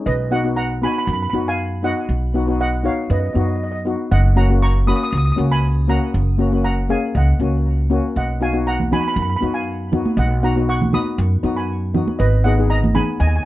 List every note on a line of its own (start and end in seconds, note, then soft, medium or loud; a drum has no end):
0.06 0.85 B1 loud
0.06 0.30 B4 medium
0.06 0.31 D#5 medium
0.31 0.39 B3 medium
0.31 0.40 D#4 medium
0.31 0.40 F#4 medium
0.31 0.56 D#5 medium
0.31 0.56 F#5 medium
0.44 0.67 B3 medium
0.44 0.67 D#4 medium
0.44 0.67 F#4 medium
0.56 0.80 F#5 medium
0.56 0.83 A#5 loud
0.82 1.13 B3 medium
0.82 1.13 D#4 medium
0.82 1.13 F#4 medium
0.82 0.91 G#5 medium
0.82 0.91 B5 loud
0.92 0.97 B5 medium
0.98 1.04 B5 medium
1.06 1.27 F#2 loud
1.06 1.12 B5 medium
1.13 1.21 B5 medium
1.23 1.29 B5 medium
1.30 1.92 F#2 medium
1.30 1.64 B3 medium
1.30 1.64 D#4 medium
1.30 1.36 B5 medium
1.34 1.64 F#4 medium
1.48 1.82 F5 medium
1.48 1.85 G#5 medium
1.83 2.14 B3 medium
1.83 2.14 D#4 medium
1.83 2.14 F#4 medium
1.83 2.56 D#5 medium
1.83 2.60 F#5 medium
2.09 2.87 B1 medium
2.34 2.42 B3 medium
2.34 2.42 D#4 medium
2.34 2.43 F#4 medium
2.47 2.70 B3 medium
2.47 2.70 D#4 medium
2.47 2.70 F#4 medium
2.61 2.83 D#5 medium
2.61 2.86 F#5 loud
2.83 3.15 B3 medium
2.83 3.15 D#4 medium
2.83 3.15 F#4 medium
2.83 3.08 C#5 medium
2.83 3.11 F5 medium
3.10 3.29 F#2 loud
3.10 3.18 B4 medium
3.10 3.18 D#5 medium
3.19 3.25 D#5 soft
3.26 3.32 D#5 soft
3.33 3.94 F#2 medium
3.33 3.65 B3 medium
3.33 3.66 D#4 medium
3.33 3.66 F#4 medium
3.33 3.40 D#5 soft
3.41 3.48 D#5 medium
3.49 3.55 D#5 soft
3.56 3.62 D#5 soft
3.63 3.70 D#5 medium
3.71 3.78 D#5 medium
3.85 4.11 B3 medium
3.85 4.11 D#4 medium
3.85 4.12 F#4 medium
4.12 4.90 F#1 loud
4.12 4.35 D#5 medium
4.12 4.36 F#5 medium
4.36 4.44 A#3 medium
4.36 4.44 C#4 medium
4.36 4.45 F#4 medium
4.36 4.60 F#5 medium
4.36 4.62 A#5 medium
4.49 4.72 A#3 medium
4.49 4.73 C#4 medium
4.49 4.73 F#4 medium
4.62 4.86 A#5 medium
4.62 4.88 C#6 loud
4.87 5.18 A#3 medium
4.87 5.18 C#4 medium
4.87 5.18 F#4 medium
4.87 4.95 B5 medium
4.87 4.95 D#6 loud
4.96 5.02 D#6 medium
5.03 5.10 D#6 loud
5.11 5.32 C#2 loud
5.11 5.16 D#6 medium
5.17 5.24 D#6 medium
5.25 5.31 D#6 medium
5.32 5.40 D#6 medium
5.36 5.97 C#2 loud
5.36 5.67 A#3 medium
5.36 5.68 C#4 medium
5.36 5.68 F#4 medium
5.52 5.86 G#5 medium
5.52 5.90 B5 loud
5.87 6.18 A#3 medium
5.87 6.19 C#4 medium
5.87 6.19 F#4 medium
5.87 6.61 F#5 medium
5.87 6.63 A#5 loud
6.14 6.92 F#1 loud
6.38 6.46 A#3 medium
6.38 6.47 C#4 medium
6.38 6.47 F#4 medium
6.52 6.75 A#3 medium
6.52 6.75 C#4 medium
6.52 6.75 F#4 medium
6.64 6.88 F#5 medium
6.64 6.88 A#5 loud
6.89 7.20 A#3 medium
6.89 7.20 C#4 medium
6.89 7.20 G#4 medium
6.89 7.13 F5 medium
6.89 7.13 G#5 medium
7.15 7.34 C#2 loud
7.15 7.87 D#5 medium
7.15 7.88 F#5 medium
7.40 7.98 C#2 medium
7.40 7.70 A#3 medium
7.40 7.71 C#4 medium
7.40 7.71 F#4 medium
7.90 8.15 A#3 medium
7.90 8.16 C#4 medium
7.90 8.16 F#4 medium
8.16 8.94 B1 loud
8.16 8.40 D#5 medium
8.16 8.42 F#5 medium
8.41 8.49 B3 medium
8.41 8.49 D#4 medium
8.41 8.49 F#4 medium
8.41 8.65 F5 medium
8.41 8.68 G#5 medium
8.53 8.76 B3 medium
8.53 8.76 D#4 medium
8.53 8.77 F#4 medium
8.67 8.91 F#5 medium
8.67 8.90 A#5 loud
8.80 high conga medium
8.80 low conga medium
8.92 9.22 B3 medium
8.92 9.22 D#4 medium
8.92 9.23 F#4 medium
8.92 9.00 G#5 medium
8.92 9.00 B5 loud
8.92 low conga medium
9.01 9.07 B5 medium
9.08 9.13 B5 medium
9.14 9.36 F#2 loud
9.14 9.21 B5 medium
9.22 9.29 B5 medium
9.30 9.35 B5 medium
9.36 9.44 B5 medium
9.41 10.01 F#2 medium
9.41 9.72 B3 medium
9.41 9.72 D#4 medium
9.41 9.73 F#4 medium
9.54 9.89 F5 medium
9.54 9.89 G#5 medium
9.92 10.23 B3 medium
9.92 10.23 D#4 medium
9.92 10.23 F#4 medium
9.92 low conga medium
10.06 high conga medium
10.17 10.95 B1 loud
10.17 10.41 D#5 medium
10.17 10.42 F#5 medium
10.43 10.51 B3 medium
10.43 10.51 D#4 medium
10.43 10.52 F#4 medium
10.43 10.67 F#5 medium
10.43 10.70 A#5 medium
10.56 10.79 B3 medium
10.56 10.79 D#4 medium
10.56 10.79 F#4 medium
10.69 10.92 F#5 medium
10.69 10.95 C#6 loud
10.82 high conga medium
10.82 low conga medium
10.93 11.24 B3 medium
10.93 11.24 D#4 medium
10.93 11.24 F#4 medium
10.93 11.54 B5 medium
10.93 11.59 D#6 loud
10.93 low conga medium
11.18 11.38 F#2 loud
11.43 12.02 F#2 medium
11.43 11.74 B3 medium
11.43 11.74 D#4 medium
11.43 11.75 F#4 medium
11.56 11.92 G#5 medium
11.56 11.91 B5 medium
11.94 12.20 B3 medium
11.94 12.20 D#4 medium
11.94 12.20 F#4 medium
11.94 low conga medium
12.08 high conga medium
12.19 12.98 G#1 loud
12.19 12.43 B4 medium
12.19 12.44 D#5 medium
12.44 12.53 B3 medium
12.44 12.53 D#4 medium
12.44 12.53 G#4 medium
12.44 12.69 D#5 medium
12.44 12.71 F#5 medium
12.58 12.81 B3 medium
12.58 12.81 D#4 medium
12.58 12.81 G#4 medium
12.70 12.94 D#5 medium
12.70 12.93 A#5 loud
12.84 high conga medium
12.84 low conga medium
12.95 13.25 B3 medium
12.95 13.26 D#4 medium
12.95 13.26 G#4 medium
12.95 13.19 G#5 medium
12.95 13.21 B5 loud
12.95 low conga medium
13.20 13.40 D#2 loud
13.20 13.28 D#5 medium
13.20 13.26 G#5 medium
13.27 13.35 G#5 medium
13.36 13.42 G#5 medium